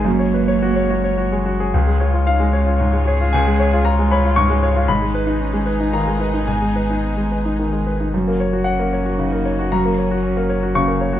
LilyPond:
<<
  \new Staff \with { instrumentName = "Grand piano" } { \time 3/4 \key cis \mixolydian \tempo 4 = 114 << { r2. | r4 eis''2 | gis''4 ais''8 b''8 cis'''4 | b''2 ais''4 |
gis''2~ gis''8 r8 | r4 fis''2 | ais''2 cis'''4 | } \\ { fis,16 cis''16 b'16 cis''16 fis'16 cis''16 fis'16 cis''16 fis'16 gis16 fis'16 gis'16 | cis,16 gis16 cis''16 eis'8 gis16 cis''16 eis'16 gis,16 gis16 cis''16 eis'16 | cis,16 gis16 cis''16 eis'8 gis16 cis''16 eis'16 gis,16 gis16 cis''16 eis'16 | gis,16 gis16 b'16 dis'8 gis16 b'16 dis'16 dis16 gis16 b'16 dis'16 |
gis,16 gis16 b'16 dis'8 gis16 b'16 dis'16 dis16 gis16 b'16 dis'16 | fis,16 ais16 cis''16 fis'8 ais16 cis''16 fis'16 cis16 ais16 cis''16 fis'16 | fis,16 ais16 cis''16 fis'8 ais16 cis''16 fis'16 cis16 ais16 cis''16 fis'16 | } >> }
  \new Staff \with { instrumentName = "Cello" } { \time 3/4 \key cis \mixolydian ais2 r4 | gis'8 eis'8 dis'8 cis'8 eis'8 gis'8~ | gis'4 eis'2 | dis'4 cis'8 dis'8 eis'8 dis'8 |
b2~ b8 r8 | r4 cis'4 dis'4 | cis'2 ais4 | }
  \new Staff \with { instrumentName = "String section" } { \time 3/4 \key cis \mixolydian << { <cis' cis''>2. | <cis' cis''>2.~ | <cis' cis''>2. | <dis' gis'>2.~ |
<dis' gis'>2. | <cis' fis'>2.~ | <cis' fis'>2. | } \\ { gis2. | gis2.~ | gis2.~ | gis2.~ |
gis2. | ais2.~ | ais2. | } >> }
  \new Staff \with { instrumentName = "Sub bass" } { \clef bass \time 3/4 \key cis \mixolydian fis,,2. | cis,2.~ | cis,2. | gis,,2.~ |
gis,,2. | fis,,2.~ | fis,,2. | }
>>